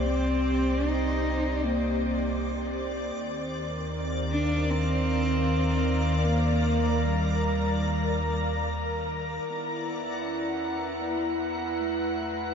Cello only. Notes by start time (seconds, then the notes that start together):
0.08 C4
0.87 D#4
1.64 A#3
4.31 D4
4.70 C4
6.27 A#3
7.05 G3
9.45 B3
10.22 C#4
11.01 B3
11.40 B3
11.80 A3